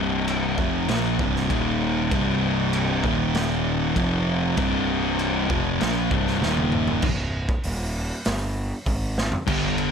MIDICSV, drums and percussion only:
0, 0, Header, 1, 2, 480
1, 0, Start_track
1, 0, Key_signature, -3, "minor"
1, 0, Tempo, 613497
1, 1659, Time_signature, 4, 2, 24, 8
1, 7757, End_track
2, 0, Start_track
2, 0, Title_t, "Drums"
2, 216, Note_on_c, 9, 49, 62
2, 294, Note_off_c, 9, 49, 0
2, 453, Note_on_c, 9, 36, 96
2, 531, Note_off_c, 9, 36, 0
2, 692, Note_on_c, 9, 49, 63
2, 701, Note_on_c, 9, 38, 126
2, 771, Note_off_c, 9, 49, 0
2, 779, Note_off_c, 9, 38, 0
2, 933, Note_on_c, 9, 36, 108
2, 1012, Note_off_c, 9, 36, 0
2, 1063, Note_on_c, 9, 38, 36
2, 1142, Note_off_c, 9, 38, 0
2, 1174, Note_on_c, 9, 36, 100
2, 1176, Note_on_c, 9, 49, 61
2, 1252, Note_off_c, 9, 36, 0
2, 1254, Note_off_c, 9, 49, 0
2, 1654, Note_on_c, 9, 36, 105
2, 1654, Note_on_c, 9, 49, 60
2, 1732, Note_off_c, 9, 36, 0
2, 1732, Note_off_c, 9, 49, 0
2, 2135, Note_on_c, 9, 49, 59
2, 2213, Note_off_c, 9, 49, 0
2, 2376, Note_on_c, 9, 36, 95
2, 2454, Note_off_c, 9, 36, 0
2, 2617, Note_on_c, 9, 49, 60
2, 2626, Note_on_c, 9, 38, 122
2, 2696, Note_off_c, 9, 49, 0
2, 2704, Note_off_c, 9, 38, 0
2, 3099, Note_on_c, 9, 36, 88
2, 3099, Note_on_c, 9, 49, 59
2, 3177, Note_off_c, 9, 36, 0
2, 3177, Note_off_c, 9, 49, 0
2, 3577, Note_on_c, 9, 49, 61
2, 3580, Note_on_c, 9, 36, 114
2, 3655, Note_off_c, 9, 49, 0
2, 3658, Note_off_c, 9, 36, 0
2, 4060, Note_on_c, 9, 49, 57
2, 4139, Note_off_c, 9, 49, 0
2, 4302, Note_on_c, 9, 36, 107
2, 4381, Note_off_c, 9, 36, 0
2, 4542, Note_on_c, 9, 49, 58
2, 4551, Note_on_c, 9, 38, 105
2, 4621, Note_off_c, 9, 49, 0
2, 4629, Note_off_c, 9, 38, 0
2, 4781, Note_on_c, 9, 36, 112
2, 4860, Note_off_c, 9, 36, 0
2, 4908, Note_on_c, 9, 38, 36
2, 4987, Note_off_c, 9, 38, 0
2, 5029, Note_on_c, 9, 38, 61
2, 5107, Note_off_c, 9, 38, 0
2, 5141, Note_on_c, 9, 48, 71
2, 5220, Note_off_c, 9, 48, 0
2, 5258, Note_on_c, 9, 45, 94
2, 5336, Note_off_c, 9, 45, 0
2, 5379, Note_on_c, 9, 43, 94
2, 5457, Note_off_c, 9, 43, 0
2, 5494, Note_on_c, 9, 57, 120
2, 5499, Note_on_c, 9, 36, 118
2, 5572, Note_off_c, 9, 57, 0
2, 5577, Note_off_c, 9, 36, 0
2, 5858, Note_on_c, 9, 36, 107
2, 5936, Note_off_c, 9, 36, 0
2, 5975, Note_on_c, 9, 46, 67
2, 6053, Note_off_c, 9, 46, 0
2, 6454, Note_on_c, 9, 46, 68
2, 6462, Note_on_c, 9, 38, 107
2, 6532, Note_off_c, 9, 46, 0
2, 6540, Note_off_c, 9, 38, 0
2, 6933, Note_on_c, 9, 46, 59
2, 6935, Note_on_c, 9, 36, 80
2, 7011, Note_off_c, 9, 46, 0
2, 7013, Note_off_c, 9, 36, 0
2, 7181, Note_on_c, 9, 38, 65
2, 7260, Note_off_c, 9, 38, 0
2, 7291, Note_on_c, 9, 43, 96
2, 7369, Note_off_c, 9, 43, 0
2, 7414, Note_on_c, 9, 36, 110
2, 7414, Note_on_c, 9, 49, 81
2, 7414, Note_on_c, 9, 57, 124
2, 7492, Note_off_c, 9, 36, 0
2, 7492, Note_off_c, 9, 49, 0
2, 7492, Note_off_c, 9, 57, 0
2, 7651, Note_on_c, 9, 49, 68
2, 7729, Note_off_c, 9, 49, 0
2, 7757, End_track
0, 0, End_of_file